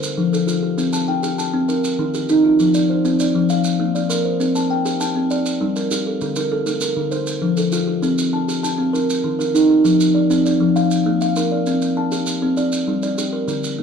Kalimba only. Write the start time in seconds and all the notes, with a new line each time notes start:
Already playing: C5
0.17 F3
0.33 A4
0.47 F4
0.63 G4
0.78 C4
0.93 A5
1.08 G5
1.23 G4
1.38 A5
1.54 C4
1.69 A#4
1.99 D#3
2.15 G4
2.30 D#4
2.44 F4
2.60 F3
2.74 D5
2.90 C5
3.05 C4
3.20 D5
3.35 F3
3.50 F5
3.80 A#3
3.95 D5
4.10 A#4
4.25 C5
4.40 C4
4.55 A5
4.70 G5
4.85 G4
5.01 A5
5.16 C4
5.31 D5
5.61 G3
5.76 A#4
5.91 G4
6.06 A4
6.21 D3
6.36 A#4
6.52 A4
6.66 A3
6.82 A#4
6.97 D3
7.11 C5
7.42 F3
7.57 A4
7.72 F4
7.87 G4
8.02 C4
8.33 A5
8.48 G4
8.63 A5
8.78 C4
8.93 A#4
9.24 D#3
9.39 A#4
9.54 D#4
9.70 G4
9.84 F3
10.14 D5
10.30 C4
10.46 D5
10.61 F3
10.76 F5
11.06 A#3
11.21 F5
11.37 A#4
11.52 D5
11.67 C4
11.97 A5
12.12 G4
12.42 C4
12.57 D5
12.88 G3
13.03 D5
13.18 G4
13.33 A#4
13.48 D3
13.78 A#3